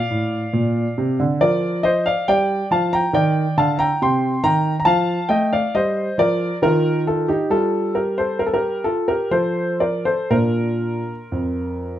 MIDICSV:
0, 0, Header, 1, 2, 480
1, 0, Start_track
1, 0, Key_signature, -2, "major"
1, 0, Tempo, 865801
1, 1266, Time_signature, 3, 2, 24, 8
1, 3178, Tempo, 886263
1, 4618, Tempo, 918836
1, 5098, Tempo, 995025
1, 6392, End_track
2, 0, Start_track
2, 0, Title_t, "Grand piano"
2, 0, Program_c, 0, 0
2, 0, Note_on_c, 0, 74, 75
2, 0, Note_on_c, 0, 77, 100
2, 58, Note_on_c, 0, 45, 55
2, 233, Note_off_c, 0, 45, 0
2, 295, Note_on_c, 0, 46, 63
2, 472, Note_off_c, 0, 46, 0
2, 542, Note_on_c, 0, 48, 63
2, 646, Note_off_c, 0, 74, 0
2, 658, Note_off_c, 0, 48, 0
2, 663, Note_on_c, 0, 50, 65
2, 665, Note_off_c, 0, 77, 0
2, 778, Note_off_c, 0, 50, 0
2, 781, Note_on_c, 0, 53, 60
2, 782, Note_on_c, 0, 74, 88
2, 788, Note_on_c, 0, 70, 56
2, 1010, Note_off_c, 0, 70, 0
2, 1016, Note_on_c, 0, 75, 89
2, 1024, Note_off_c, 0, 74, 0
2, 1024, Note_on_c, 0, 72, 70
2, 1129, Note_off_c, 0, 53, 0
2, 1136, Note_off_c, 0, 72, 0
2, 1141, Note_off_c, 0, 75, 0
2, 1141, Note_on_c, 0, 77, 82
2, 1148, Note_on_c, 0, 74, 60
2, 1259, Note_off_c, 0, 74, 0
2, 1264, Note_off_c, 0, 77, 0
2, 1264, Note_on_c, 0, 55, 67
2, 1265, Note_on_c, 0, 79, 93
2, 1271, Note_on_c, 0, 74, 77
2, 1439, Note_off_c, 0, 55, 0
2, 1470, Note_off_c, 0, 79, 0
2, 1493, Note_off_c, 0, 74, 0
2, 1501, Note_on_c, 0, 53, 59
2, 1506, Note_on_c, 0, 81, 82
2, 1509, Note_on_c, 0, 77, 65
2, 1620, Note_off_c, 0, 77, 0
2, 1624, Note_on_c, 0, 82, 89
2, 1627, Note_off_c, 0, 81, 0
2, 1634, Note_on_c, 0, 79, 70
2, 1677, Note_off_c, 0, 53, 0
2, 1735, Note_off_c, 0, 79, 0
2, 1737, Note_on_c, 0, 51, 63
2, 1743, Note_on_c, 0, 79, 85
2, 1745, Note_on_c, 0, 74, 72
2, 1747, Note_off_c, 0, 82, 0
2, 1915, Note_off_c, 0, 51, 0
2, 1971, Note_off_c, 0, 74, 0
2, 1982, Note_on_c, 0, 50, 66
2, 1984, Note_on_c, 0, 81, 80
2, 1987, Note_off_c, 0, 79, 0
2, 1989, Note_on_c, 0, 77, 62
2, 2100, Note_off_c, 0, 77, 0
2, 2100, Note_on_c, 0, 82, 94
2, 2106, Note_off_c, 0, 81, 0
2, 2106, Note_on_c, 0, 79, 76
2, 2156, Note_off_c, 0, 50, 0
2, 2218, Note_off_c, 0, 79, 0
2, 2223, Note_off_c, 0, 82, 0
2, 2227, Note_on_c, 0, 48, 62
2, 2231, Note_on_c, 0, 84, 82
2, 2236, Note_on_c, 0, 79, 64
2, 2396, Note_off_c, 0, 48, 0
2, 2450, Note_off_c, 0, 79, 0
2, 2459, Note_on_c, 0, 51, 58
2, 2460, Note_on_c, 0, 82, 100
2, 2464, Note_off_c, 0, 84, 0
2, 2469, Note_on_c, 0, 79, 69
2, 2629, Note_off_c, 0, 51, 0
2, 2629, Note_off_c, 0, 82, 0
2, 2650, Note_off_c, 0, 79, 0
2, 2659, Note_on_c, 0, 82, 75
2, 2690, Note_on_c, 0, 81, 97
2, 2691, Note_on_c, 0, 53, 68
2, 2696, Note_off_c, 0, 82, 0
2, 2697, Note_on_c, 0, 77, 78
2, 2864, Note_off_c, 0, 53, 0
2, 2918, Note_off_c, 0, 77, 0
2, 2931, Note_off_c, 0, 81, 0
2, 2931, Note_on_c, 0, 79, 85
2, 2933, Note_on_c, 0, 57, 62
2, 2938, Note_on_c, 0, 75, 71
2, 3049, Note_off_c, 0, 75, 0
2, 3055, Note_off_c, 0, 79, 0
2, 3063, Note_on_c, 0, 77, 77
2, 3067, Note_on_c, 0, 74, 62
2, 3110, Note_off_c, 0, 57, 0
2, 3176, Note_off_c, 0, 74, 0
2, 3183, Note_off_c, 0, 77, 0
2, 3185, Note_on_c, 0, 55, 59
2, 3186, Note_on_c, 0, 75, 83
2, 3193, Note_on_c, 0, 72, 59
2, 3356, Note_off_c, 0, 55, 0
2, 3410, Note_off_c, 0, 72, 0
2, 3419, Note_on_c, 0, 53, 60
2, 3423, Note_off_c, 0, 75, 0
2, 3426, Note_on_c, 0, 74, 89
2, 3429, Note_on_c, 0, 70, 66
2, 3591, Note_off_c, 0, 53, 0
2, 3626, Note_off_c, 0, 74, 0
2, 3647, Note_off_c, 0, 70, 0
2, 3660, Note_on_c, 0, 51, 62
2, 3663, Note_on_c, 0, 70, 89
2, 3672, Note_on_c, 0, 65, 70
2, 3863, Note_off_c, 0, 70, 0
2, 3887, Note_off_c, 0, 65, 0
2, 3904, Note_on_c, 0, 69, 71
2, 3908, Note_on_c, 0, 65, 52
2, 4003, Note_off_c, 0, 51, 0
2, 4013, Note_off_c, 0, 65, 0
2, 4019, Note_on_c, 0, 67, 75
2, 4020, Note_off_c, 0, 69, 0
2, 4024, Note_on_c, 0, 63, 61
2, 4131, Note_off_c, 0, 63, 0
2, 4137, Note_off_c, 0, 67, 0
2, 4137, Note_on_c, 0, 55, 67
2, 4140, Note_on_c, 0, 69, 84
2, 4146, Note_on_c, 0, 65, 59
2, 4365, Note_off_c, 0, 65, 0
2, 4379, Note_off_c, 0, 69, 0
2, 4379, Note_on_c, 0, 70, 71
2, 4385, Note_on_c, 0, 67, 49
2, 4494, Note_off_c, 0, 67, 0
2, 4499, Note_off_c, 0, 70, 0
2, 4503, Note_on_c, 0, 72, 66
2, 4511, Note_on_c, 0, 69, 56
2, 4618, Note_off_c, 0, 69, 0
2, 4619, Note_on_c, 0, 70, 75
2, 4621, Note_off_c, 0, 72, 0
2, 4655, Note_off_c, 0, 70, 0
2, 4657, Note_on_c, 0, 69, 67
2, 4692, Note_off_c, 0, 69, 0
2, 4693, Note_on_c, 0, 70, 74
2, 4700, Note_on_c, 0, 67, 56
2, 4835, Note_off_c, 0, 55, 0
2, 4849, Note_off_c, 0, 67, 0
2, 4854, Note_on_c, 0, 69, 76
2, 4857, Note_off_c, 0, 70, 0
2, 4862, Note_on_c, 0, 65, 55
2, 4971, Note_off_c, 0, 65, 0
2, 4976, Note_off_c, 0, 69, 0
2, 4978, Note_on_c, 0, 70, 72
2, 4984, Note_on_c, 0, 67, 60
2, 5094, Note_off_c, 0, 67, 0
2, 5098, Note_on_c, 0, 53, 52
2, 5100, Note_off_c, 0, 70, 0
2, 5100, Note_on_c, 0, 72, 74
2, 5104, Note_on_c, 0, 69, 58
2, 5319, Note_off_c, 0, 69, 0
2, 5333, Note_off_c, 0, 72, 0
2, 5336, Note_on_c, 0, 74, 69
2, 5340, Note_on_c, 0, 70, 52
2, 5443, Note_off_c, 0, 53, 0
2, 5449, Note_off_c, 0, 70, 0
2, 5455, Note_off_c, 0, 74, 0
2, 5456, Note_on_c, 0, 72, 69
2, 5459, Note_on_c, 0, 69, 53
2, 5572, Note_off_c, 0, 69, 0
2, 5576, Note_on_c, 0, 62, 39
2, 5577, Note_on_c, 0, 46, 51
2, 5578, Note_on_c, 0, 58, 43
2, 5579, Note_off_c, 0, 72, 0
2, 5579, Note_on_c, 0, 70, 81
2, 5584, Note_on_c, 0, 65, 53
2, 5918, Note_off_c, 0, 46, 0
2, 5966, Note_off_c, 0, 62, 0
2, 5968, Note_off_c, 0, 58, 0
2, 6067, Note_on_c, 0, 41, 51
2, 6392, Note_off_c, 0, 41, 0
2, 6392, Note_off_c, 0, 65, 0
2, 6392, Note_off_c, 0, 70, 0
2, 6392, End_track
0, 0, End_of_file